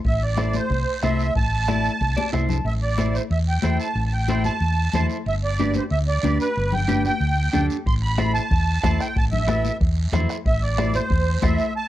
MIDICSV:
0, 0, Header, 1, 6, 480
1, 0, Start_track
1, 0, Key_signature, 0, "minor"
1, 0, Tempo, 324851
1, 81, Time_signature, 4, 2, 24, 8
1, 17554, End_track
2, 0, Start_track
2, 0, Title_t, "Accordion"
2, 0, Program_c, 0, 21
2, 96, Note_on_c, 0, 76, 83
2, 337, Note_off_c, 0, 76, 0
2, 337, Note_on_c, 0, 74, 80
2, 815, Note_on_c, 0, 72, 85
2, 826, Note_off_c, 0, 74, 0
2, 1482, Note_off_c, 0, 72, 0
2, 1527, Note_on_c, 0, 76, 89
2, 1975, Note_off_c, 0, 76, 0
2, 2019, Note_on_c, 0, 81, 103
2, 3399, Note_off_c, 0, 81, 0
2, 3934, Note_on_c, 0, 76, 87
2, 4042, Note_off_c, 0, 76, 0
2, 4175, Note_on_c, 0, 74, 85
2, 4648, Note_on_c, 0, 72, 71
2, 4670, Note_off_c, 0, 74, 0
2, 4758, Note_off_c, 0, 72, 0
2, 4892, Note_on_c, 0, 76, 82
2, 5002, Note_off_c, 0, 76, 0
2, 5141, Note_on_c, 0, 79, 85
2, 5586, Note_off_c, 0, 79, 0
2, 5610, Note_on_c, 0, 81, 90
2, 5964, Note_off_c, 0, 81, 0
2, 6000, Note_on_c, 0, 81, 65
2, 6101, Note_off_c, 0, 81, 0
2, 6109, Note_on_c, 0, 79, 84
2, 6551, Note_off_c, 0, 79, 0
2, 6580, Note_on_c, 0, 81, 99
2, 7481, Note_off_c, 0, 81, 0
2, 7800, Note_on_c, 0, 76, 97
2, 7903, Note_off_c, 0, 76, 0
2, 8036, Note_on_c, 0, 74, 86
2, 8475, Note_off_c, 0, 74, 0
2, 8523, Note_on_c, 0, 72, 77
2, 8625, Note_off_c, 0, 72, 0
2, 8737, Note_on_c, 0, 76, 96
2, 8846, Note_off_c, 0, 76, 0
2, 8982, Note_on_c, 0, 74, 89
2, 9428, Note_off_c, 0, 74, 0
2, 9469, Note_on_c, 0, 71, 87
2, 9946, Note_on_c, 0, 79, 93
2, 9958, Note_off_c, 0, 71, 0
2, 10389, Note_off_c, 0, 79, 0
2, 10423, Note_on_c, 0, 79, 105
2, 11321, Note_off_c, 0, 79, 0
2, 11628, Note_on_c, 0, 84, 101
2, 11734, Note_off_c, 0, 84, 0
2, 11860, Note_on_c, 0, 83, 96
2, 12305, Note_off_c, 0, 83, 0
2, 12320, Note_on_c, 0, 81, 101
2, 13311, Note_on_c, 0, 79, 84
2, 13316, Note_off_c, 0, 81, 0
2, 13550, Note_off_c, 0, 79, 0
2, 13562, Note_on_c, 0, 81, 98
2, 13664, Note_off_c, 0, 81, 0
2, 13767, Note_on_c, 0, 76, 83
2, 14439, Note_off_c, 0, 76, 0
2, 15468, Note_on_c, 0, 76, 92
2, 15701, Note_on_c, 0, 74, 86
2, 15706, Note_off_c, 0, 76, 0
2, 16174, Note_on_c, 0, 72, 93
2, 16189, Note_off_c, 0, 74, 0
2, 16904, Note_on_c, 0, 76, 95
2, 16911, Note_off_c, 0, 72, 0
2, 17341, Note_off_c, 0, 76, 0
2, 17381, Note_on_c, 0, 81, 107
2, 17554, Note_off_c, 0, 81, 0
2, 17554, End_track
3, 0, Start_track
3, 0, Title_t, "Clean electric guitar"
3, 0, Program_c, 1, 27
3, 559, Note_on_c, 1, 64, 66
3, 568, Note_on_c, 1, 69, 64
3, 573, Note_on_c, 1, 72, 73
3, 898, Note_off_c, 1, 64, 0
3, 903, Note_off_c, 1, 69, 0
3, 905, Note_off_c, 1, 72, 0
3, 1528, Note_on_c, 1, 64, 67
3, 1538, Note_on_c, 1, 72, 72
3, 1540, Note_on_c, 1, 69, 63
3, 1865, Note_off_c, 1, 64, 0
3, 1869, Note_off_c, 1, 72, 0
3, 1870, Note_off_c, 1, 69, 0
3, 2488, Note_on_c, 1, 69, 60
3, 2492, Note_on_c, 1, 64, 66
3, 2497, Note_on_c, 1, 74, 73
3, 2827, Note_off_c, 1, 64, 0
3, 2827, Note_off_c, 1, 69, 0
3, 2830, Note_off_c, 1, 74, 0
3, 3201, Note_on_c, 1, 74, 63
3, 3430, Note_off_c, 1, 74, 0
3, 3438, Note_on_c, 1, 64, 75
3, 3442, Note_on_c, 1, 76, 64
3, 3446, Note_on_c, 1, 69, 70
3, 3451, Note_on_c, 1, 72, 84
3, 3671, Note_off_c, 1, 76, 0
3, 3687, Note_on_c, 1, 81, 60
3, 3783, Note_off_c, 1, 64, 0
3, 3787, Note_off_c, 1, 69, 0
3, 3787, Note_off_c, 1, 72, 0
3, 3914, Note_off_c, 1, 81, 0
3, 4401, Note_on_c, 1, 64, 69
3, 4408, Note_on_c, 1, 69, 62
3, 4420, Note_on_c, 1, 72, 78
3, 4745, Note_off_c, 1, 64, 0
3, 4749, Note_off_c, 1, 69, 0
3, 4754, Note_off_c, 1, 72, 0
3, 5372, Note_on_c, 1, 64, 66
3, 5380, Note_on_c, 1, 69, 61
3, 5387, Note_on_c, 1, 72, 79
3, 5711, Note_off_c, 1, 64, 0
3, 5715, Note_off_c, 1, 69, 0
3, 5718, Note_off_c, 1, 72, 0
3, 6345, Note_on_c, 1, 64, 70
3, 6347, Note_on_c, 1, 69, 64
3, 6356, Note_on_c, 1, 72, 80
3, 6677, Note_off_c, 1, 64, 0
3, 6679, Note_off_c, 1, 69, 0
3, 6684, Note_off_c, 1, 72, 0
3, 7311, Note_on_c, 1, 69, 73
3, 7312, Note_on_c, 1, 64, 80
3, 7314, Note_on_c, 1, 72, 88
3, 7640, Note_off_c, 1, 64, 0
3, 7642, Note_off_c, 1, 69, 0
3, 7643, Note_off_c, 1, 72, 0
3, 8269, Note_on_c, 1, 62, 72
3, 8281, Note_on_c, 1, 71, 79
3, 8282, Note_on_c, 1, 67, 67
3, 8602, Note_off_c, 1, 62, 0
3, 8604, Note_off_c, 1, 67, 0
3, 8607, Note_off_c, 1, 71, 0
3, 9217, Note_on_c, 1, 62, 70
3, 9228, Note_on_c, 1, 67, 66
3, 9236, Note_on_c, 1, 71, 79
3, 9554, Note_off_c, 1, 62, 0
3, 9561, Note_off_c, 1, 67, 0
3, 9561, Note_off_c, 1, 71, 0
3, 10165, Note_on_c, 1, 62, 67
3, 10172, Note_on_c, 1, 67, 64
3, 10176, Note_on_c, 1, 71, 76
3, 10509, Note_off_c, 1, 62, 0
3, 10511, Note_off_c, 1, 67, 0
3, 10513, Note_off_c, 1, 71, 0
3, 11129, Note_on_c, 1, 62, 76
3, 11139, Note_on_c, 1, 67, 74
3, 11141, Note_on_c, 1, 69, 89
3, 11470, Note_off_c, 1, 62, 0
3, 11472, Note_off_c, 1, 67, 0
3, 11475, Note_off_c, 1, 69, 0
3, 12087, Note_on_c, 1, 64, 72
3, 12098, Note_on_c, 1, 69, 60
3, 12105, Note_on_c, 1, 72, 76
3, 12428, Note_off_c, 1, 64, 0
3, 12434, Note_off_c, 1, 69, 0
3, 12437, Note_off_c, 1, 72, 0
3, 13053, Note_on_c, 1, 69, 75
3, 13058, Note_on_c, 1, 72, 87
3, 13059, Note_on_c, 1, 64, 83
3, 13391, Note_off_c, 1, 64, 0
3, 13391, Note_off_c, 1, 69, 0
3, 13392, Note_off_c, 1, 72, 0
3, 13999, Note_on_c, 1, 64, 75
3, 14008, Note_on_c, 1, 69, 67
3, 14017, Note_on_c, 1, 71, 77
3, 14342, Note_off_c, 1, 64, 0
3, 14346, Note_off_c, 1, 69, 0
3, 14351, Note_off_c, 1, 71, 0
3, 14967, Note_on_c, 1, 69, 78
3, 14973, Note_on_c, 1, 64, 83
3, 14975, Note_on_c, 1, 72, 92
3, 15305, Note_off_c, 1, 64, 0
3, 15306, Note_off_c, 1, 69, 0
3, 15309, Note_off_c, 1, 72, 0
3, 15931, Note_on_c, 1, 69, 67
3, 15934, Note_on_c, 1, 64, 76
3, 15939, Note_on_c, 1, 72, 77
3, 16266, Note_off_c, 1, 64, 0
3, 16266, Note_off_c, 1, 69, 0
3, 16269, Note_off_c, 1, 72, 0
3, 16882, Note_on_c, 1, 64, 67
3, 16892, Note_on_c, 1, 69, 64
3, 16899, Note_on_c, 1, 72, 76
3, 17219, Note_off_c, 1, 64, 0
3, 17224, Note_off_c, 1, 69, 0
3, 17227, Note_off_c, 1, 72, 0
3, 17554, End_track
4, 0, Start_track
4, 0, Title_t, "Fingered electric bass"
4, 0, Program_c, 2, 33
4, 71, Note_on_c, 2, 33, 95
4, 846, Note_off_c, 2, 33, 0
4, 1034, Note_on_c, 2, 36, 85
4, 1231, Note_off_c, 2, 36, 0
4, 1527, Note_on_c, 2, 36, 87
4, 1912, Note_off_c, 2, 36, 0
4, 1997, Note_on_c, 2, 33, 91
4, 2772, Note_off_c, 2, 33, 0
4, 2969, Note_on_c, 2, 36, 92
4, 3162, Note_off_c, 2, 36, 0
4, 3442, Note_on_c, 2, 36, 78
4, 3831, Note_off_c, 2, 36, 0
4, 3909, Note_on_c, 2, 33, 108
4, 4689, Note_off_c, 2, 33, 0
4, 4883, Note_on_c, 2, 40, 98
4, 5273, Note_off_c, 2, 40, 0
4, 5365, Note_on_c, 2, 40, 81
4, 5562, Note_off_c, 2, 40, 0
4, 5841, Note_on_c, 2, 33, 111
4, 6617, Note_off_c, 2, 33, 0
4, 6806, Note_on_c, 2, 40, 89
4, 7196, Note_off_c, 2, 40, 0
4, 7297, Note_on_c, 2, 40, 87
4, 7490, Note_off_c, 2, 40, 0
4, 7771, Note_on_c, 2, 31, 108
4, 8543, Note_off_c, 2, 31, 0
4, 8732, Note_on_c, 2, 38, 91
4, 9119, Note_off_c, 2, 38, 0
4, 9211, Note_on_c, 2, 38, 81
4, 9406, Note_off_c, 2, 38, 0
4, 9706, Note_on_c, 2, 31, 107
4, 10471, Note_off_c, 2, 31, 0
4, 10645, Note_on_c, 2, 38, 94
4, 11034, Note_off_c, 2, 38, 0
4, 11139, Note_on_c, 2, 38, 89
4, 11331, Note_off_c, 2, 38, 0
4, 11614, Note_on_c, 2, 33, 109
4, 12383, Note_off_c, 2, 33, 0
4, 12570, Note_on_c, 2, 40, 93
4, 12956, Note_off_c, 2, 40, 0
4, 13057, Note_on_c, 2, 40, 86
4, 13248, Note_off_c, 2, 40, 0
4, 13531, Note_on_c, 2, 33, 112
4, 14299, Note_off_c, 2, 33, 0
4, 14487, Note_on_c, 2, 40, 90
4, 14873, Note_off_c, 2, 40, 0
4, 14956, Note_on_c, 2, 40, 88
4, 15154, Note_off_c, 2, 40, 0
4, 15448, Note_on_c, 2, 33, 112
4, 16215, Note_off_c, 2, 33, 0
4, 16407, Note_on_c, 2, 40, 91
4, 16790, Note_off_c, 2, 40, 0
4, 16884, Note_on_c, 2, 40, 91
4, 17076, Note_off_c, 2, 40, 0
4, 17554, End_track
5, 0, Start_track
5, 0, Title_t, "Two-headed folk drums"
5, 73, Note_on_c, 9, 36, 76
5, 220, Note_off_c, 9, 36, 0
5, 557, Note_on_c, 9, 37, 72
5, 705, Note_off_c, 9, 37, 0
5, 1038, Note_on_c, 9, 36, 74
5, 1186, Note_off_c, 9, 36, 0
5, 1518, Note_on_c, 9, 37, 74
5, 1666, Note_off_c, 9, 37, 0
5, 2004, Note_on_c, 9, 36, 77
5, 2152, Note_off_c, 9, 36, 0
5, 2485, Note_on_c, 9, 37, 81
5, 2633, Note_off_c, 9, 37, 0
5, 2971, Note_on_c, 9, 36, 72
5, 3119, Note_off_c, 9, 36, 0
5, 3456, Note_on_c, 9, 37, 73
5, 3604, Note_off_c, 9, 37, 0
5, 11619, Note_on_c, 9, 36, 75
5, 11766, Note_off_c, 9, 36, 0
5, 12090, Note_on_c, 9, 37, 83
5, 12238, Note_off_c, 9, 37, 0
5, 12577, Note_on_c, 9, 36, 78
5, 12724, Note_off_c, 9, 36, 0
5, 13055, Note_on_c, 9, 36, 69
5, 13055, Note_on_c, 9, 37, 80
5, 13203, Note_off_c, 9, 36, 0
5, 13203, Note_off_c, 9, 37, 0
5, 13305, Note_on_c, 9, 37, 71
5, 13453, Note_off_c, 9, 37, 0
5, 13536, Note_on_c, 9, 36, 79
5, 13684, Note_off_c, 9, 36, 0
5, 14015, Note_on_c, 9, 37, 81
5, 14163, Note_off_c, 9, 37, 0
5, 14492, Note_on_c, 9, 36, 80
5, 14639, Note_off_c, 9, 36, 0
5, 14978, Note_on_c, 9, 37, 81
5, 15126, Note_off_c, 9, 37, 0
5, 15219, Note_on_c, 9, 37, 68
5, 15367, Note_off_c, 9, 37, 0
5, 15450, Note_on_c, 9, 36, 80
5, 15598, Note_off_c, 9, 36, 0
5, 15933, Note_on_c, 9, 37, 83
5, 16080, Note_off_c, 9, 37, 0
5, 16409, Note_on_c, 9, 36, 77
5, 16557, Note_off_c, 9, 36, 0
5, 16890, Note_on_c, 9, 36, 68
5, 16894, Note_on_c, 9, 37, 80
5, 17038, Note_off_c, 9, 36, 0
5, 17042, Note_off_c, 9, 37, 0
5, 17554, End_track
6, 0, Start_track
6, 0, Title_t, "Drums"
6, 68, Note_on_c, 9, 74, 62
6, 216, Note_off_c, 9, 74, 0
6, 546, Note_on_c, 9, 63, 76
6, 551, Note_on_c, 9, 73, 61
6, 694, Note_off_c, 9, 63, 0
6, 698, Note_off_c, 9, 73, 0
6, 790, Note_on_c, 9, 73, 65
6, 798, Note_on_c, 9, 63, 64
6, 938, Note_off_c, 9, 73, 0
6, 946, Note_off_c, 9, 63, 0
6, 1032, Note_on_c, 9, 74, 65
6, 1180, Note_off_c, 9, 74, 0
6, 1512, Note_on_c, 9, 73, 61
6, 1527, Note_on_c, 9, 63, 79
6, 1659, Note_off_c, 9, 73, 0
6, 1675, Note_off_c, 9, 63, 0
6, 1762, Note_on_c, 9, 73, 62
6, 1910, Note_off_c, 9, 73, 0
6, 2000, Note_on_c, 9, 74, 63
6, 2148, Note_off_c, 9, 74, 0
6, 2476, Note_on_c, 9, 73, 61
6, 2488, Note_on_c, 9, 63, 79
6, 2624, Note_off_c, 9, 73, 0
6, 2636, Note_off_c, 9, 63, 0
6, 2724, Note_on_c, 9, 73, 62
6, 2872, Note_off_c, 9, 73, 0
6, 2966, Note_on_c, 9, 74, 63
6, 3114, Note_off_c, 9, 74, 0
6, 3217, Note_on_c, 9, 63, 73
6, 3364, Note_off_c, 9, 63, 0
6, 3445, Note_on_c, 9, 73, 62
6, 3450, Note_on_c, 9, 63, 71
6, 3592, Note_off_c, 9, 73, 0
6, 3598, Note_off_c, 9, 63, 0
6, 3676, Note_on_c, 9, 64, 82
6, 3695, Note_on_c, 9, 73, 66
6, 3824, Note_off_c, 9, 64, 0
6, 3843, Note_off_c, 9, 73, 0
6, 3927, Note_on_c, 9, 74, 61
6, 4075, Note_off_c, 9, 74, 0
6, 4400, Note_on_c, 9, 63, 83
6, 4414, Note_on_c, 9, 73, 65
6, 4548, Note_off_c, 9, 63, 0
6, 4562, Note_off_c, 9, 73, 0
6, 4655, Note_on_c, 9, 73, 69
6, 4803, Note_off_c, 9, 73, 0
6, 4889, Note_on_c, 9, 74, 68
6, 5037, Note_off_c, 9, 74, 0
6, 5354, Note_on_c, 9, 63, 79
6, 5362, Note_on_c, 9, 73, 65
6, 5502, Note_off_c, 9, 63, 0
6, 5510, Note_off_c, 9, 73, 0
6, 5609, Note_on_c, 9, 73, 68
6, 5757, Note_off_c, 9, 73, 0
6, 5848, Note_on_c, 9, 74, 63
6, 5996, Note_off_c, 9, 74, 0
6, 6325, Note_on_c, 9, 73, 62
6, 6329, Note_on_c, 9, 63, 85
6, 6473, Note_off_c, 9, 73, 0
6, 6477, Note_off_c, 9, 63, 0
6, 6562, Note_on_c, 9, 73, 65
6, 6572, Note_on_c, 9, 63, 69
6, 6710, Note_off_c, 9, 73, 0
6, 6720, Note_off_c, 9, 63, 0
6, 6803, Note_on_c, 9, 74, 71
6, 6950, Note_off_c, 9, 74, 0
6, 7291, Note_on_c, 9, 63, 82
6, 7291, Note_on_c, 9, 64, 80
6, 7292, Note_on_c, 9, 73, 68
6, 7439, Note_off_c, 9, 63, 0
6, 7439, Note_off_c, 9, 64, 0
6, 7440, Note_off_c, 9, 73, 0
6, 7528, Note_on_c, 9, 73, 64
6, 7676, Note_off_c, 9, 73, 0
6, 7776, Note_on_c, 9, 74, 65
6, 7924, Note_off_c, 9, 74, 0
6, 8254, Note_on_c, 9, 73, 63
6, 8267, Note_on_c, 9, 63, 86
6, 8402, Note_off_c, 9, 73, 0
6, 8415, Note_off_c, 9, 63, 0
6, 8477, Note_on_c, 9, 73, 63
6, 8501, Note_on_c, 9, 63, 69
6, 8625, Note_off_c, 9, 73, 0
6, 8649, Note_off_c, 9, 63, 0
6, 8725, Note_on_c, 9, 74, 69
6, 8872, Note_off_c, 9, 74, 0
6, 9220, Note_on_c, 9, 73, 66
6, 9221, Note_on_c, 9, 63, 80
6, 9368, Note_off_c, 9, 73, 0
6, 9369, Note_off_c, 9, 63, 0
6, 9458, Note_on_c, 9, 73, 67
6, 9606, Note_off_c, 9, 73, 0
6, 9689, Note_on_c, 9, 74, 65
6, 9837, Note_off_c, 9, 74, 0
6, 9934, Note_on_c, 9, 64, 67
6, 10081, Note_off_c, 9, 64, 0
6, 10177, Note_on_c, 9, 73, 69
6, 10182, Note_on_c, 9, 63, 85
6, 10325, Note_off_c, 9, 73, 0
6, 10330, Note_off_c, 9, 63, 0
6, 10414, Note_on_c, 9, 73, 62
6, 10420, Note_on_c, 9, 63, 68
6, 10562, Note_off_c, 9, 73, 0
6, 10568, Note_off_c, 9, 63, 0
6, 10658, Note_on_c, 9, 74, 64
6, 10806, Note_off_c, 9, 74, 0
6, 11132, Note_on_c, 9, 73, 68
6, 11147, Note_on_c, 9, 63, 77
6, 11147, Note_on_c, 9, 64, 83
6, 11279, Note_off_c, 9, 73, 0
6, 11294, Note_off_c, 9, 63, 0
6, 11294, Note_off_c, 9, 64, 0
6, 11378, Note_on_c, 9, 73, 64
6, 11526, Note_off_c, 9, 73, 0
6, 11628, Note_on_c, 9, 74, 62
6, 11775, Note_off_c, 9, 74, 0
6, 12088, Note_on_c, 9, 63, 79
6, 12098, Note_on_c, 9, 73, 64
6, 12236, Note_off_c, 9, 63, 0
6, 12246, Note_off_c, 9, 73, 0
6, 12334, Note_on_c, 9, 73, 65
6, 12482, Note_off_c, 9, 73, 0
6, 12580, Note_on_c, 9, 74, 67
6, 12727, Note_off_c, 9, 74, 0
6, 13063, Note_on_c, 9, 63, 81
6, 13063, Note_on_c, 9, 73, 70
6, 13211, Note_off_c, 9, 63, 0
6, 13211, Note_off_c, 9, 73, 0
6, 13305, Note_on_c, 9, 73, 70
6, 13452, Note_off_c, 9, 73, 0
6, 13545, Note_on_c, 9, 74, 64
6, 13693, Note_off_c, 9, 74, 0
6, 13781, Note_on_c, 9, 64, 65
6, 13929, Note_off_c, 9, 64, 0
6, 14007, Note_on_c, 9, 73, 62
6, 14017, Note_on_c, 9, 63, 81
6, 14155, Note_off_c, 9, 73, 0
6, 14165, Note_off_c, 9, 63, 0
6, 14254, Note_on_c, 9, 73, 70
6, 14257, Note_on_c, 9, 63, 65
6, 14402, Note_off_c, 9, 73, 0
6, 14405, Note_off_c, 9, 63, 0
6, 14497, Note_on_c, 9, 74, 70
6, 14644, Note_off_c, 9, 74, 0
6, 14971, Note_on_c, 9, 63, 83
6, 14971, Note_on_c, 9, 64, 80
6, 14972, Note_on_c, 9, 73, 66
6, 15119, Note_off_c, 9, 63, 0
6, 15119, Note_off_c, 9, 64, 0
6, 15120, Note_off_c, 9, 73, 0
6, 15209, Note_on_c, 9, 73, 70
6, 15356, Note_off_c, 9, 73, 0
6, 15455, Note_on_c, 9, 74, 64
6, 15603, Note_off_c, 9, 74, 0
6, 15931, Note_on_c, 9, 63, 85
6, 15932, Note_on_c, 9, 73, 62
6, 16079, Note_off_c, 9, 63, 0
6, 16080, Note_off_c, 9, 73, 0
6, 16160, Note_on_c, 9, 63, 71
6, 16163, Note_on_c, 9, 73, 69
6, 16308, Note_off_c, 9, 63, 0
6, 16311, Note_off_c, 9, 73, 0
6, 16399, Note_on_c, 9, 74, 72
6, 16547, Note_off_c, 9, 74, 0
6, 16876, Note_on_c, 9, 63, 84
6, 16880, Note_on_c, 9, 73, 68
6, 17024, Note_off_c, 9, 63, 0
6, 17027, Note_off_c, 9, 73, 0
6, 17117, Note_on_c, 9, 73, 66
6, 17265, Note_off_c, 9, 73, 0
6, 17554, End_track
0, 0, End_of_file